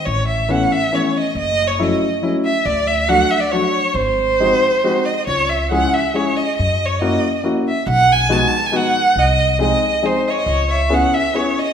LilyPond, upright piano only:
\new Staff \with { instrumentName = "Upright piano" } { \time 3/4 \key cis \minor \tempo 4 = 138 r4 <e a b cis'>8 r8 <e a b cis'>8 r8 | r4 <fis a cis' e'>8 r8 <fis a cis' e'>8 r8 | r4 <fis a d' fis'>8 r8 <fis a d' fis'>8 r8 | r4 <gis bis dis' fis'>8 r8 <gis bis dis' fis'>8 r8 |
r4 <gis cis' e' gis'>8 r8 <gis cis' e' gis'>8 r8 | r4 <ais cis' e' fis'>8 r8 <ais cis' e' fis'>8 r8 | r4 <gis b dis' fis'>8 r8 <gis b dis' fis'>8 r8 | r4 <gis bis dis' gis'>8 r8 <gis bis dis' gis'>8 r8 |
r4 <b cis' e' gis'>8 r8 <b cis' e' gis'>8 r8 | }